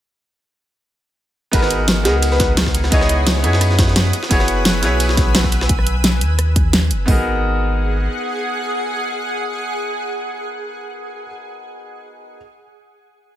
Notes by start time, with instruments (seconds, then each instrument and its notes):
1.51 sub bass G#1, grand piano B3 D#4 F#4 G#4 A#4, ambient pad G#4 F#5, digital synth lead B4, kick, closed hi-hat, ride
1.62 cross-stick, snare
1.70 closed hi-hat, ride
1.88 snare, closed hi-hat, ride
2.03 sub bass C#2, grand piano B3 D#4 F#4 G#4 A#4, digital synth lead G#4, snare, closed hi-hat, ride
2.23 closed hi-hat, ride
2.32 digital synth lead B4, snare
2.40 kick, snare, closed hi-hat, ride
2.57 snare, closed hi-hat, ride
2.66 kick, cross-stick, snare
2.75 closed hi-hat, ride
2.84 cross-stick, snare
2.90 sub bass C#2, grand piano B3 D#4 E4 G#4 C#5, digital synth lead D#5, kick, closed hi-hat, ride
3.01 cross-stick, snare
3.09 closed hi-hat, ride
3.27 snare, closed hi-hat, ride
3.36 snare
3.42 sub bass F#2, grand piano B3 D#4 E4 G#4 C#5, closed hi-hat, ride
3.53 snare
3.61 cross-stick, closed hi-hat, ride
3.71 snare
3.79 kick, snare, closed hi-hat, ride
3.88 snare
3.96 snare, closed hi-hat, ride
4.05 snare
4.13 ambient pad B4 G#5 E6, closed hi-hat, ride
4.23 snare
4.29 sub bass F#1, grand piano B3 E4 F#4 G#4 C#5, kick, closed hi-hat, ride
4.40 cross-stick, snare
4.48 closed hi-hat, ride
4.65 snare, closed hi-hat, ride
4.81 sub bass B1, grand piano B3 E4 F#4 G#4 C#5, snare, closed hi-hat, ride
5.00 closed hi-hat, ride
5.09 snare
5.17 kick, snare, closed hi-hat, ride
5.35 snare, closed hi-hat, ride
5.44 kick, cross-stick, snare
5.52 closed hi-hat, ride
5.61 cross-stick, snare
5.69 sub bass B1, kick, closed hi-hat
5.79 cross-stick
5.87 closed hi-hat
6.04 snare, closed hi-hat
6.21 sub bass D#2, closed hi-hat
6.39 cross-stick, closed hi-hat
6.56 kick, closed hi-hat
6.73 snare, closed hi-hat
6.91 sub bass F#1, closed hi-hat
7.06 sub bass G#1, grand piano B3 D#4 F#4 G#4, ambient pad G#4 F#5, kick, floor tom, open hi-hat
7.11 grand piano A#4